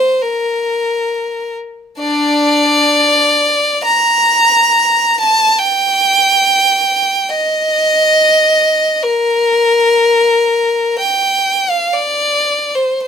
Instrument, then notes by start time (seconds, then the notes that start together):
violin
Already playing: C5
0.21 A#4
1.99 D4 D5
3.84 A#5
5.20 A5
5.58 G5
7.29 D#5
9.03 A#4
10.99 G5
11.70 F5
11.93 D5
12.75 C5
13.03 C5